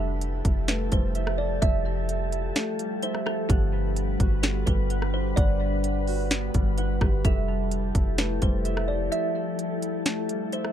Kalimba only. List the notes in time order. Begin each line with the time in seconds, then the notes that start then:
Already playing: A4
0.69 B4
0.93 C5
1.38 D5
1.62 E5
3.03 C5
3.26 A4
3.49 G4
4.43 A4
4.66 B4
5.14 C5
5.36 D5
6.78 B4
7.02 G4
7.25 A4
8.19 B4
8.43 C5
8.88 D5
9.12 E5
10.53 C5